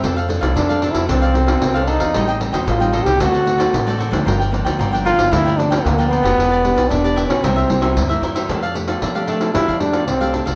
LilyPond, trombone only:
\new Staff \with { instrumentName = "Trombone" } { \time 4/4 \key c \mixolydian \tempo 4 = 114 c'8 r8 \tuplet 3/2 { d'4 e'8 } c'4. ees'8~ | ees'8 r8 \tuplet 3/2 { f'4 g'8 } fis'4. r8 | r4. f'8 e'8 d'8 bes8 b8~ | b4 d'8. cis'16 c'4. r8 |
\key f \major r4. a8 e'8 d'8 c'8. r16 | }